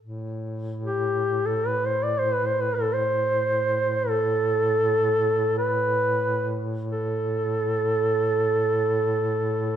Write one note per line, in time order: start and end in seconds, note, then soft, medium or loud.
0.01 9.76 A2 soft
0.84 1.47 G4 medium
1.46 1.69 A4 medium
1.68 1.87 B4 medium
1.85 2.05 C5 medium
2.03 2.21 D5 medium
2.19 2.35 C5 medium
2.33 2.48 B4 medium
2.46 2.63 C5 medium
2.61 2.77 B4 medium
2.75 2.95 A4 medium
2.93 4.11 C5 medium
4.09 5.58 A4 medium
5.58 6.55 B4 medium
6.92 9.76 A4 medium